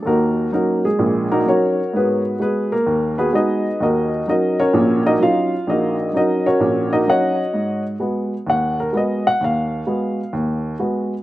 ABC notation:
X:1
M:4/4
L:1/8
Q:"Swing" 1/4=128
K:Ebm
V:1 name="Upright piano"
[B,EG=AB]2 [B,GB] [_A,_A]2 [B,EGB] [GBd]2 | [CGAc]2 [Ac] [B,B]2 [CGAc] [EAce]2 | [EGBe]2 [GBe] [DGBd]2 [EGBe] [Ff]2 | [EGBe]2 [EGBe] [DGBd]2 [EGBe] [Gdeg]2- |
[Gdeg] z3 g B e g | f4 z4 |]
V:2 name="Upright piano" clef=bass
E,,2 [G,DE] z [B,,,B,,]2 [G,DE] z | A,,2 [A,CG] z E,,2 [A,CG] z | E,,2 [G,DE] z [B,,,B,,]2 [G,DE] z | B,,,2 [G,DE] z [B,,,B,,]2 [G,DE] z |
A,,2 [A,CG] z E,,2 [A,CG] z | E,,2 [A,CG] z E,,2 [A,CG] z |]